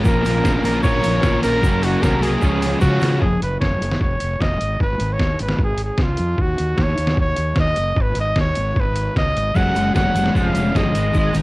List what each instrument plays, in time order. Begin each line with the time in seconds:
0.04 fingered electric bass A#1, distorted electric guitar A#2 F3 A#3 C#4 F4 A#4, kick, shaker
0.08 trumpet A#4
0.25 fingered electric bass A#1, open hi-hat, shaker
0.43 fingered electric bass A#1, distorted electric guitar A#2 F3 A#3 C#4 F4 A#4, kick, snare, shaker
0.63 fingered electric bass A#1, distorted electric guitar A#2 F3 A#3 C#4 F4 A#4, trumpet A#4, open hi-hat, shaker
0.82 fingered electric bass A#1, distorted electric guitar A#2 F3 A#3 C#4 F4 A#4, trumpet C#5, kick, shaker
1.04 fingered electric bass A#1, open hi-hat, shaker
1.20 fingered electric bass A#1, distorted electric guitar A#2 F3 A#3 C#4 F4 A#4, kick, snare, shaker
1.41 fingered electric bass A#1, distorted electric guitar A#2 F3 A#3 C#4 F4 A#4, trumpet A#4, snare, open hi-hat, shaker
1.61 fingered electric bass F#1, distorted electric guitar F#3 A#3 C#4 F#4 A#4, kick, shaker
1.83 trumpet F#4, open hi-hat, shaker
2.01 fingered electric bass C2, distorted electric guitar F#3 A#3 C#4 F#4 A#4, trumpet A#4, kick, snare, shaker
2.21 distorted electric guitar F#3 A#3 C#4 F#4 A#4, trumpet G#4, open hi-hat, shaker
2.41 fingered electric bass C#2, distorted electric guitar C#3 F3 G#3 C#4 F4 C#5, kick, shaker
2.62 open hi-hat, shaker
2.81 distorted electric guitar C#3 F3 G#3 C#4 F4 C#5, fingered electric bass C#3, trumpet F#4, kick, shaker
3.00 distorted electric guitar C#3 F3 G#3 C#4 F4 C#5, fingered electric bass C#3, snare, open hi-hat, shaker
3.22 fingered electric bass F#1, trumpet G#4, kick
3.42 fingered electric bass F#1, trumpet B4, closed hi-hat
3.61 fingered electric bass F#1, trumpet C#5, kick, snare
3.82 fingered electric bass F#1, closed hi-hat
3.92 snare
4.01 fingered electric bass F1, trumpet C#5, kick
4.20 fingered electric bass F1, closed hi-hat
4.41 fingered electric bass F1, trumpet D#5, kick, snare
4.61 fingered electric bass G#1, closed hi-hat
4.80 fingered electric bass G#1, trumpet B4, kick
5.00 fingered electric bass G#1, closed hi-hat
5.13 trumpet C#5
5.19 fingered electric bass D#2, kick, snare
5.39 fingered electric bass G#1, trumpet B4, closed hi-hat
5.49 snare
5.58 fingered electric bass G#1, kick
5.64 trumpet G#4
5.78 closed hi-hat
5.84 trumpet G#4
5.98 fingered electric bass C#2, kick, snare
6.03 trumpet F4
6.17 fingered electric bass F2, closed hi-hat
6.38 fingered electric bass D#2, trumpet F#4, kick
6.58 fingered electric bass D#2, closed hi-hat
6.78 fingered electric bass D#2, kick, snare
6.83 trumpet C#5
6.98 fingered electric bass D#2, closed hi-hat
7.07 snare
7.17 fingered electric bass D#2, trumpet C#5, kick
7.36 fingered electric bass D#2, closed hi-hat
7.56 fingered electric bass D#2, kick, snare
7.60 trumpet D#5
7.76 fingered electric bass F#1, closed hi-hat
7.96 fingered electric bass G#1, kick
8.01 trumpet B4
8.15 fingered electric bass G#1, closed hi-hat
8.20 trumpet D#5
8.36 fingered electric bass D#2, kick, snare
8.41 trumpet C#5
8.55 fingered electric bass G#1, closed hi-hat
8.76 fingered electric bass G#1, trumpet B4, kick
8.96 closed hi-hat
9.16 fingered electric bass C#2, trumpet D#5, kick, snare
9.36 fingered electric bass G#1, closed hi-hat
9.55 fingered electric bass F#1, distorted electric guitar F#3 G#3 C#4, trumpet F#5, kick, shaker
9.76 fingered electric bass F#1, distorted electric guitar F#3 G#3, overdriven electric guitar C#4, closed hi-hat, shaker
9.95 fingered electric bass F#1, distorted electric guitar F#3 G#3, overdriven electric guitar C#5, trumpet F#5, kick, snare, shaker
10.14 fingered electric bass F#1, distorted electric guitar F#3 G#3, overdriven electric guitar F#4, closed hi-hat, shaker
10.26 snare
10.35 fingered electric bass F1, distorted electric guitar F3 G#3 C#4, trumpet F5, kick, shaker
10.54 fingered electric bass F1, distorted electric guitar F3 G#3, overdriven electric guitar C#4, closed hi-hat, shaker
10.75 fingered electric bass G1, distorted electric guitar F3 G#3, trumpet D#5, kick, snare, shaker
10.93 fingered electric bass G#1, distorted electric guitar G#2 D#3 G#3, closed hi-hat, shaker
11.12 fingered electric bass G#1, distorted electric guitar G#2 D#3 G#3, kick, shaker
11.19 trumpet D#5
11.34 fingered electric bass G#1, distorted electric guitar G#2 D#3, overdriven electric guitar D#4, closed hi-hat, shaker